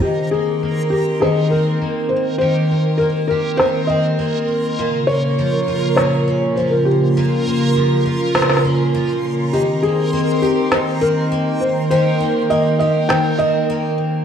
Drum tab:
SD |----------------o---------------|----------------o---------------|----------------o---------------|----------------oooo------------|

SD |----------------o---------------|----------------o---------------|